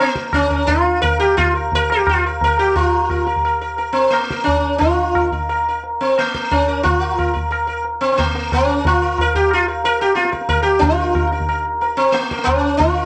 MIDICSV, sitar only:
0, 0, Header, 1, 2, 480
1, 0, Start_track
1, 0, Tempo, 346620
1, 936, Time_signature, 3, 2, 24, 8
1, 4769, Tempo, 340329
1, 9089, Tempo, 333704
1, 14369, Tempo, 327154
1, 18588, End_track
2, 0, Start_track
2, 0, Title_t, "Sitar"
2, 0, Program_c, 0, 104
2, 7, Note_on_c, 0, 58, 80
2, 219, Note_on_c, 0, 70, 38
2, 440, Note_off_c, 0, 70, 0
2, 473, Note_on_c, 0, 61, 86
2, 486, Note_off_c, 0, 58, 0
2, 696, Note_on_c, 0, 70, 37
2, 920, Note_off_c, 0, 70, 0
2, 926, Note_on_c, 0, 65, 97
2, 961, Note_off_c, 0, 61, 0
2, 1402, Note_off_c, 0, 65, 0
2, 1408, Note_on_c, 0, 70, 100
2, 1653, Note_off_c, 0, 70, 0
2, 1658, Note_on_c, 0, 67, 93
2, 1894, Note_off_c, 0, 67, 0
2, 1900, Note_on_c, 0, 65, 89
2, 2123, Note_off_c, 0, 65, 0
2, 2150, Note_on_c, 0, 70, 37
2, 2369, Note_off_c, 0, 70, 0
2, 2423, Note_on_c, 0, 70, 103
2, 2648, Note_off_c, 0, 70, 0
2, 2657, Note_on_c, 0, 67, 83
2, 2885, Note_off_c, 0, 67, 0
2, 2897, Note_on_c, 0, 65, 75
2, 3103, Note_off_c, 0, 65, 0
2, 3134, Note_on_c, 0, 70, 38
2, 3340, Note_off_c, 0, 70, 0
2, 3381, Note_on_c, 0, 70, 95
2, 3584, Note_off_c, 0, 70, 0
2, 3590, Note_on_c, 0, 67, 81
2, 3817, Note_on_c, 0, 65, 72
2, 3828, Note_off_c, 0, 67, 0
2, 3833, Note_on_c, 0, 70, 37
2, 4047, Note_off_c, 0, 70, 0
2, 4306, Note_on_c, 0, 70, 34
2, 4481, Note_off_c, 0, 65, 0
2, 4505, Note_off_c, 0, 70, 0
2, 4522, Note_on_c, 0, 70, 32
2, 4748, Note_off_c, 0, 70, 0
2, 4775, Note_on_c, 0, 70, 39
2, 4993, Note_off_c, 0, 70, 0
2, 5010, Note_on_c, 0, 70, 34
2, 5225, Note_off_c, 0, 70, 0
2, 5242, Note_on_c, 0, 70, 36
2, 5448, Note_on_c, 0, 60, 74
2, 5472, Note_off_c, 0, 70, 0
2, 5697, Note_on_c, 0, 58, 73
2, 5721, Note_off_c, 0, 60, 0
2, 5986, Note_on_c, 0, 70, 33
2, 6163, Note_off_c, 0, 58, 0
2, 6171, Note_on_c, 0, 61, 91
2, 6205, Note_off_c, 0, 70, 0
2, 6653, Note_off_c, 0, 61, 0
2, 6658, Note_on_c, 0, 65, 90
2, 7186, Note_on_c, 0, 70, 37
2, 7346, Note_off_c, 0, 65, 0
2, 7402, Note_off_c, 0, 70, 0
2, 7419, Note_on_c, 0, 70, 36
2, 7641, Note_off_c, 0, 70, 0
2, 7657, Note_on_c, 0, 70, 38
2, 7880, Note_off_c, 0, 70, 0
2, 7930, Note_on_c, 0, 70, 36
2, 8137, Note_off_c, 0, 70, 0
2, 8384, Note_on_c, 0, 60, 69
2, 8601, Note_off_c, 0, 60, 0
2, 8634, Note_on_c, 0, 58, 72
2, 8863, Note_on_c, 0, 70, 34
2, 9079, Note_off_c, 0, 70, 0
2, 9097, Note_on_c, 0, 61, 84
2, 9114, Note_off_c, 0, 58, 0
2, 9340, Note_on_c, 0, 70, 36
2, 9544, Note_off_c, 0, 61, 0
2, 9558, Note_on_c, 0, 65, 87
2, 9561, Note_off_c, 0, 70, 0
2, 9796, Note_on_c, 0, 70, 36
2, 10030, Note_off_c, 0, 70, 0
2, 10056, Note_on_c, 0, 70, 35
2, 10239, Note_off_c, 0, 65, 0
2, 10262, Note_off_c, 0, 70, 0
2, 10280, Note_on_c, 0, 70, 33
2, 10508, Note_off_c, 0, 70, 0
2, 10526, Note_on_c, 0, 70, 39
2, 10748, Note_off_c, 0, 70, 0
2, 10765, Note_on_c, 0, 70, 33
2, 10996, Note_off_c, 0, 70, 0
2, 11249, Note_on_c, 0, 60, 78
2, 11394, Note_off_c, 0, 60, 0
2, 11411, Note_on_c, 0, 60, 55
2, 11490, Note_on_c, 0, 58, 72
2, 11495, Note_off_c, 0, 60, 0
2, 11731, Note_on_c, 0, 70, 34
2, 11960, Note_off_c, 0, 70, 0
2, 11991, Note_off_c, 0, 58, 0
2, 12000, Note_on_c, 0, 61, 86
2, 12208, Note_on_c, 0, 70, 36
2, 12437, Note_off_c, 0, 70, 0
2, 12479, Note_off_c, 0, 61, 0
2, 12485, Note_on_c, 0, 65, 91
2, 12707, Note_on_c, 0, 70, 38
2, 12926, Note_off_c, 0, 70, 0
2, 12965, Note_off_c, 0, 65, 0
2, 12979, Note_on_c, 0, 70, 96
2, 13181, Note_off_c, 0, 70, 0
2, 13187, Note_on_c, 0, 67, 93
2, 13428, Note_off_c, 0, 67, 0
2, 13445, Note_on_c, 0, 65, 83
2, 13650, Note_off_c, 0, 65, 0
2, 13656, Note_on_c, 0, 70, 39
2, 13877, Note_off_c, 0, 70, 0
2, 13899, Note_on_c, 0, 70, 99
2, 14126, Note_off_c, 0, 70, 0
2, 14132, Note_on_c, 0, 67, 87
2, 14325, Note_off_c, 0, 67, 0
2, 14331, Note_on_c, 0, 65, 71
2, 14573, Note_off_c, 0, 65, 0
2, 14580, Note_on_c, 0, 70, 34
2, 14809, Note_off_c, 0, 70, 0
2, 14826, Note_on_c, 0, 70, 98
2, 15021, Note_off_c, 0, 70, 0
2, 15027, Note_on_c, 0, 67, 80
2, 15272, Note_on_c, 0, 65, 87
2, 15310, Note_off_c, 0, 67, 0
2, 15571, Note_on_c, 0, 70, 40
2, 15766, Note_off_c, 0, 70, 0
2, 15783, Note_on_c, 0, 70, 40
2, 15973, Note_off_c, 0, 65, 0
2, 16022, Note_off_c, 0, 70, 0
2, 16050, Note_on_c, 0, 70, 38
2, 16271, Note_off_c, 0, 70, 0
2, 16289, Note_on_c, 0, 70, 41
2, 16516, Note_off_c, 0, 70, 0
2, 16768, Note_on_c, 0, 70, 42
2, 16995, Note_off_c, 0, 70, 0
2, 16999, Note_on_c, 0, 60, 86
2, 17222, Note_on_c, 0, 58, 81
2, 17255, Note_off_c, 0, 60, 0
2, 17515, Note_on_c, 0, 70, 38
2, 17687, Note_on_c, 0, 61, 105
2, 17728, Note_off_c, 0, 70, 0
2, 17732, Note_off_c, 0, 58, 0
2, 18171, Note_off_c, 0, 61, 0
2, 18177, Note_on_c, 0, 65, 99
2, 18463, Note_on_c, 0, 70, 40
2, 18588, Note_off_c, 0, 65, 0
2, 18588, Note_off_c, 0, 70, 0
2, 18588, End_track
0, 0, End_of_file